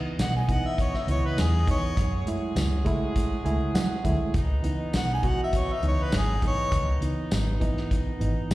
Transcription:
Already playing: reed electric piano E3 B3 D#4, horn section B3 D#4 D#5
0.19 fingered electric bass B1, harmonica F#5, snare, closed hi-hat, tambourine
0.36 harmonica G#5
0.48 reed electric piano E3 B3 D#4, harmonica F#5, kick, closed hi-hat
0.67 harmonica E5
0.78 harmonica C#5, kick, closed hi-hat
0.94 harmonica E5, snare
1.07 fingered electric bass C#2, reed electric piano E3 B3 E4, harmonica C#5, closed hi-hat
1.26 harmonica B4
1.38 fingered electric bass E2, harmonica G#4, snare, closed hi-hat, tambourine
1.66 reed electric piano E3 B3 D#4, kick, closed hi-hat
1.71 harmonica C#5
1.97 fingered electric bass F#2, horn section F#3 G#3 G#4, kick, closed hi-hat
2.26 reed electric piano G#3 A3 E4, closed hi-hat
2.56 fingered electric bass C#2, snare, closed hi-hat, tambourine
2.85 reed electric piano G#3 A3 E4, kick, closed hi-hat
3.16 kick, closed hi-hat
3.44 fingered electric bass C#2, reed electric piano G#3 A3 E4 G#5, closed hi-hat
3.75 fingered electric bass F#3, reed electric piano F#5, snare, closed hi-hat, tambourine
4.03 fingered electric bass D2, reed electric piano G#3 A3 E4 E5, kick, closed hi-hat
4.34 fingered electric bass C#2, horn section D#3 B3 D#4, kick, closed hi-hat
4.63 reed electric piano E3 B3 D#4, closed hi-hat
4.93 fingered electric bass B1, harmonica F#5, snare, closed hi-hat, tambourine
5.14 harmonica G#5
5.22 reed electric piano E3 B3 F#4, kick, closed hi-hat
5.28 harmonica F#5
5.44 harmonica E5
5.53 kick, closed hi-hat
5.57 harmonica C#5
5.73 harmonica E5
5.82 fingered electric bass C#2, reed electric piano E3 B3 D#4, closed hi-hat
5.88 harmonica C#5
6.03 harmonica B4
6.12 fingered electric bass G#1, snare, closed hi-hat, tambourine
6.17 harmonica G#4
6.41 reed electric piano E3 B3 D#4, kick, closed hi-hat
6.47 harmonica C#5
6.72 fingered electric bass C#2, kick, closed hi-hat
7.01 reed electric piano E3 B3 D#4, closed hi-hat
7.31 fingered electric bass G#1, snare, closed hi-hat, tambourine
7.60 reed electric piano E3 B3 D#4, kick, closed hi-hat
7.77 snare
7.91 kick, closed hi-hat
8.19 fingered electric bass G#1, reed electric piano E3 B3 D#4, closed hi-hat
8.50 fingered electric bass B1, closed hi-hat, tambourine

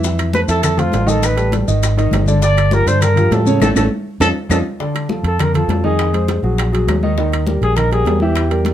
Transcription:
Already playing: fingered electric bass F2
0.04 grand piano E3 E4 E5, high bongo, high conga, maracas
0.18 high bongo, high conga, high timbale, claves, maracas
0.33 grand piano A3 A4 C5, trumpet B4, high bongo, high conga, maracas
0.48 fingered electric bass F2, grand piano E3 E4 E5, trumpet A4, high bongo, high conga, high timbale, maracas
0.63 trumpet A4, high bongo, high conga, low conga, high timbale, claves, maracas
0.77 grand piano A3 A4 C5, trumpet F4, high bongo, high conga, low conga, high timbale, maracas
0.92 fingered electric bass A1, high bongo, low bongo, high conga, high timbale, maracas
1.06 grand piano D#3 D#4 D#5, trumpet A4, high conga, maracas
1.23 trumpet B4, high bongo, high conga, high timbale, claves, maracas
1.36 grand piano G3 G4 A4, high bongo, high timbale, maracas
1.52 grand piano G3 A4, high bongo, high conga, high timbale, maracas
1.67 fingered electric bass G#1, grand piano D#3 D#4 D#5, high bongo, high conga, maracas
1.82 high bongo, high conga, high timbale, claves, maracas
1.97 grand piano D#3 D#4 D#5, high bongo, high conga, high timbale, maracas
2.11 fingered electric bass G1, high bongo, low bongo, high conga, high timbale, low timbale, claves, maracas
2.26 grand piano D3 D4 D5, high conga, maracas
2.42 grand piano D3 D4 D5, trumpet D5, high bongo, maracas
2.56 high bongo, high conga, high timbale, claves, maracas
2.71 grand piano F3 F4 G4, trumpet A#4, high bongo, high conga, maracas
2.86 fingered electric bass G2, grand piano D3 D4 D5, trumpet C5, high bongo, high conga, high timbale, maracas
3.01 trumpet A#4, high bongo, high conga, low conga, high timbale, claves, maracas
3.16 grand piano F3 F4 G4, high bongo, high conga, low conga, high timbale, maracas
3.31 fingered electric bass A2, trumpet A4, high bongo, low bongo, high conga, high timbale, low timbale, maracas
3.45 grand piano C#3 C#4 C#5, high conga, maracas
3.60 fingered electric bass A1, grand piano A3 C#4 E4, trumpet A4, low bongo, high conga, high timbale, claves, maracas
3.75 fingered electric bass A1, grand piano A3 C#4 E4, trumpet A4, low bongo, high conga, high timbale, claves, maracas
4.20 fingered electric bass F2, grand piano C#4 D#4 F4, trumpet A4, low bongo, high conga, high timbale, claves, maracas
4.49 fingered electric bass F2, grand piano C#4 D#4 F4, trumpet A4, low bongo, high conga, high timbale, claves, maracas
4.80 grand piano D3 D4 D5, high bongo, high conga
4.95 high bongo, high conga, high timbale, claves
5.09 grand piano F3 F4 A4, high bongo, high conga
5.23 fingered electric bass F2, trumpet A4, high bongo, high conga, high timbale
5.39 grand piano D3 D4 D5, trumpet A#4, high bongo, high conga, low conga, high timbale, claves
5.54 grand piano F3 F4 A4, trumpet A4, high bongo, high conga, low conga, high timbale
5.68 fingered electric bass F2, grand piano F3 F4 A4, high bongo, low bongo, high conga, high timbale, low timbale
5.84 grand piano D#3 D#4 D#5, trumpet G#4, high conga
5.99 high bongo, high conga, high timbale, claves
6.13 grand piano G#3 G#4 C5, high bongo, high conga, high timbale
6.28 high bongo, high conga, high timbale
6.43 fingered electric bass A#1, grand piano F#3 F#4 G#4, high bongo, high conga
6.58 high bongo, high conga, high timbale, claves
6.72 grand piano F#3 F#4 G#4, high bongo, high conga, high timbale
6.87 fingered electric bass D#2, high bongo, low bongo, high conga, high timbale, low timbale, claves
7.03 grand piano D#3 D#4 D#5, high conga
7.17 grand piano D#3 D#4 D#5, high bongo, high conga
7.32 high bongo, high conga, high timbale, claves
7.47 grand piano G3 G4 A#4, high bongo, high conga
7.61 fingered electric bass A#1, trumpet G#4, high bongo, high conga, high timbale
7.76 grand piano D#3 D#4 D#5, trumpet A#4, high bongo, high conga, low conga, high timbale, claves
7.91 grand piano G3 G4 A#4, trumpet G#4, high bongo, high conga, high timbale
8.05 fingered electric bass E2, grand piano G3 G4 A#4, high bongo, low bongo, high conga, high timbale, low timbale
8.20 grand piano E3 E4 E5, trumpet G4, high conga
8.36 high bongo, high timbale, claves
8.50 grand piano G3 G4 A#4, high bongo, high conga, high timbale
8.65 high bongo, high conga, high timbale

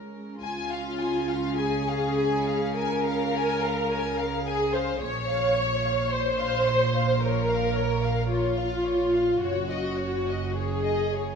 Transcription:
Already playing: double bass section C#2, cello section C#3, viola section G#3 C#4, violin section A#4
0.39 double bass section C#2, cello section C#3, violin section F4, viola section F4
0.43 violin section G#5
0.72 violin section F5
1.00 violin section G#5
1.29 violin section F5
1.56 violin section G#4 G#5
1.60 viola section G#4
1.88 violin section F5
2.15 violin section G#5
2.46 violin section F5
2.72 violin section A#4 G#5, viola section A#4
3.06 violin section F5
3.35 violin section G#5
3.63 violin section F5
3.91 violin section G#5
4.18 violin section F5
4.45 viola section G#4, violin section G#4 G#5
4.74 viola section C5, violin section C5 F5
5.00 double bass section A#1, cello section A#2, violin section C#5, viola section C#5
5.30 violin section F5
5.56 violin section C#5
5.83 violin section F5
6.11 violin section C5 C#5, viola section C5
6.38 violin section F5
6.65 violin section C#5
6.95 violin section F5
7.22 violin section A#4 C#5, viola section A#4
7.49 violin section F5
7.75 violin section C#5
8.03 violin section F5
8.28 viola section F4, violin section F4 C#5
8.56 violin section F5
8.85 violin section C#5
9.14 violin section F5
9.41 double bass section F#1, cello section F#2, viola section F#4, violin section F#4 C#5
9.71 violin section D#5
9.98 violin section C#5
10.28 violin section D#5
10.54 violin section G#4 C#5, viola section G#4
10.85 violin section D#5
11.13 violin section C#5

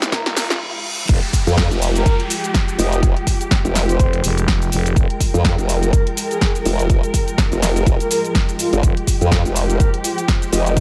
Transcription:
Already playing: string section F3 G#3 G4, ambient pad G#3 F4 G5, riser
0.02 fm bass G1, snare, closed hi-hat, cabasa
0.12 soft synth lead A#4, kick, snare, closed hi-hat, reverse cymbal, cabasa
0.26 snare, closed hi-hat
0.36 soft synth lead A#4, snare, open hi-hat, cabasa
0.50 snare, closed hi-hat, cabasa
1.09 fm bass F1, string section F3 G#3 G4, ambient pad F4, kick, closed hi-hat, crash, downlifter, cabasa
1.20 ambient pad G#3, closed hi-hat
1.33 ambient pad G5, kick, open hi-hat, cabasa
1.47 wobble bass F2, closed hi-hat, cabasa
1.57 kick, snare, closed hi-hat, cabasa
1.71 wobble bass F1, closed hi-hat, cabasa
1.82 open hi-hat, cabasa
1.96 soft synth lead A#4, closed hi-hat, cabasa
2.06 soft synth lead A#4, kick, closed hi-hat, cabasa
2.20 closed hi-hat
2.30 open hi-hat, cabasa
2.44 closed hi-hat, cabasa
2.54 kick, snare, closed hi-hat, cabasa
2.68 closed hi-hat, cabasa
2.78 wobble bass F1, soft synth lead D#5, open hi-hat, cabasa
2.92 soft synth lead D#5, closed hi-hat, cabasa
3.03 kick, closed hi-hat, cabasa
3.17 closed hi-hat
3.27 kick, open hi-hat, cabasa
3.41 closed hi-hat, cabasa
3.51 kick, snare, closed hi-hat, cabasa
3.65 wobble bass F1, closed hi-hat, cabasa
3.75 snare, open hi-hat, cabasa
3.89 soft synth lead C5, closed hi-hat, cabasa
3.99 fm bass F1, kick, closed hi-hat, cabasa
4.13 closed hi-hat
4.24 fm bass F1, open hi-hat, cabasa
4.38 closed hi-hat, cabasa
4.48 kick, snare, closed hi-hat, cabasa
4.62 closed hi-hat, cabasa
4.72 fm bass F1, open hi-hat, cabasa
4.86 closed hi-hat, cabasa
4.96 fm bass F1, string section A#4, kick, closed hi-hat, cabasa
5.10 closed hi-hat
5.20 kick, open hi-hat, cabasa
5.34 wobble bass F2, closed hi-hat, cabasa
5.45 kick, snare, closed hi-hat, cabasa
5.58 wobble bass F1, closed hi-hat, cabasa
5.69 open hi-hat, cabasa
5.83 soft synth lead A#4, closed hi-hat, cabasa
5.93 soft synth lead A#4, kick, closed hi-hat, cabasa
6.07 closed hi-hat
6.17 open hi-hat, cabasa
6.31 soft synth lead G#4, closed hi-hat, cabasa
6.41 soft synth lead G#4, kick, snare, closed hi-hat, cabasa
6.55 closed hi-hat, cabasa
6.65 wobble bass F1, open hi-hat, cabasa
6.79 closed hi-hat, cabasa
6.90 kick, closed hi-hat, cabasa
7.03 closed hi-hat, cabasa
7.14 kick, open hi-hat, cabasa
7.28 closed hi-hat, cabasa
7.38 kick, snare, closed hi-hat, cabasa
7.52 wobble bass F1, closed hi-hat, cabasa
7.62 snare, open hi-hat, cabasa
7.76 closed hi-hat, cabasa
7.86 wobble bass F1, kick, closed hi-hat, cabasa
8.00 soft synth lead A#4, closed hi-hat, cabasa
8.11 soft synth lead A#4, open hi-hat, cabasa
8.25 closed hi-hat, cabasa
8.35 kick, snare, closed hi-hat, cabasa
8.49 closed hi-hat, cabasa
8.59 soft synth lead F4, open hi-hat, cabasa
8.73 wobble bass G1, soft synth lead F4, closed hi-hat, cabasa
8.83 fm bass F1, string section G4, kick, closed hi-hat, cabasa
8.97 closed hi-hat
9.07 ambient pad C5, kick, open hi-hat, cabasa
9.21 wobble bass F2, closed hi-hat, cabasa
9.32 kick, snare, closed hi-hat, cabasa
9.45 wobble bass F1, closed hi-hat, cabasa
9.56 open hi-hat, cabasa
9.70 soft synth lead A#4, closed hi-hat, cabasa
9.80 soft synth lead A#4, kick, closed hi-hat, cabasa
9.94 closed hi-hat
10.04 open hi-hat, cabasa
10.18 closed hi-hat, cabasa
10.28 kick, snare, closed hi-hat, cabasa
10.42 closed hi-hat, cabasa
10.52 wobble bass F1, soft synth lead D#5, open hi-hat, cabasa
10.66 soft synth lead D#5, closed hi-hat, cabasa
10.77 kick, closed hi-hat

